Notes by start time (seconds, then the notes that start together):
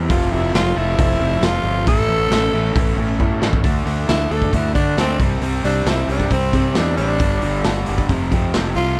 0.09 F1 F2 C3 F3 A3 C4 F4 A4, kick, open hi-hat
0.31 F1 A3 C4 E4 F4
0.54 F1 F3 A3 C4 F4, snare, open hi-hat
0.75 F1 F2 C3 F3 A3 C4 E4 F4
0.97 F1 F3 A3 C4 F4, kick, open hi-hat
1.20 F1 A3 C4 F4
1.41 F1 F3 A3 C4 F4, snare, open hi-hat
1.45 F4
1.63 G1 A3 C4 F4
1.85 A1 A2 E3 A3 B3 C#4 E4 A4, kick, open hi-hat
2.08 A1 A3 C#4 E4
2.30 A1 E3 A3 C#4 E4, snare, open hi-hat
2.53 A1 A2 E3 A3 C#4 E4
2.74 A1 E3 A3 C#4 E4, kick, open hi-hat
2.97 A1 C#4 E4
3.01 A3
3.19 A2 E3 A3 C#4 E4, kick
3.40 A1 A3 C#4 E4, snare
3.53 kick
3.63 D2 D3 A3 D4, kick, open hi-hat
3.85 D2 D3 A3 D4, open hi-hat
4.08 D2 D3 A3 D4 E4, snare, open hi-hat
4.30 D2 D3 A3 D4 A4, open hi-hat
4.42 kick
4.52 D2 D3 A3 D4 E4, kick, open hi-hat
4.73 D3 A3 D4, kick, open hi-hat
4.96 D2 D3 A3 D4, snare, open hi-hat
5.00 C4
5.19 C2 C3 G3 C4, kick, open hi-hat
5.41 C2 C3 G3 C4, open hi-hat
5.64 C2 C3 G3 C4 D4, open hi-hat
5.85 C2 C3 G3 C4, snare, open hi-hat
5.89 E4
6.08 C2 C3 G3 C4 D4, open hi-hat
6.20 kick
6.31 C2 C3 G3 C4, kick, open hi-hat
6.53 C3 G3 C4, kick, open hi-hat
6.75 E2 C3 G3 C4 D4, snare, open hi-hat
6.97 A1 C3 G3 C4 D4, open hi-hat
7.19 G1 G2 D3 G3, kick, open hi-hat
7.42 G1 G2 D3 G3, open hi-hat
7.64 G1 G2 D3 G3, snare, open hi-hat
7.86 F#1 G2 D3 G3, open hi-hat
7.98 kick
8.09 F1 F2 C3 F3, kick, open hi-hat
8.31 F2 C3 F3, kick, open hi-hat
8.54 F1 F2 C3 F3, snare, open hi-hat
8.76 C2 F2 C3 F3 F4, open hi-hat